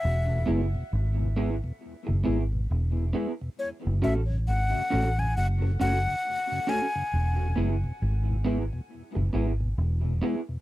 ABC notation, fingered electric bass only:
X:1
M:4/4
L:1/16
Q:"Swing 16ths" 1/4=68
K:Emix
V:1 name="Fingered electric bass" clef=bass
E,,,2 F,,, z G,,,3 z2 F,,, G,,,2 E,,,2 z2 | z F,,, A,,,2 G,,, z A,,,2 F,,,2 F,,, z4 z | E,,,2 F,,, z G,,,3 z2 F,,, G,,,2 E,,,2 z2 |]